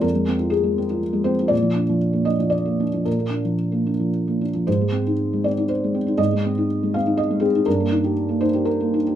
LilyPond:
\new Staff \with { instrumentName = "Felt piano" } { \time 3/4 \key bes \mixolydian \tempo 4 = 119 << { bes'4 aes'4 r8 c''8 | d''4. ees''8 d''4 | bes'2~ bes'8 r8 | c''4. d''8 c''4 |
ees''4. f''8 ees''8 aes'8 | bes'4. c''8 bes'4 | } \\ { <f, f'>16 aes16 c'16 f'8 aes16 c'16 f'8 aes16 c'16 f'16 | bes,16 f16 d'16 f8 bes16 d'16 f8 bes16 d'16 f16 | bes,16 bes16 d'16 f8 bes16 d'16 f8 bes16 d'16 f16 | aes,16 aes16 c'16 ees'8 aes16 c'16 ees'8 aes16 c'16 ees'16 |
aes,16 aes16 c'16 ees'8 aes16 c'16 ees'8 aes16 c'16 ees'16 | g,16 bes16 ees'16 g'8 bes16 ees'16 g'8 bes16 ees'16 g'16 | } >> }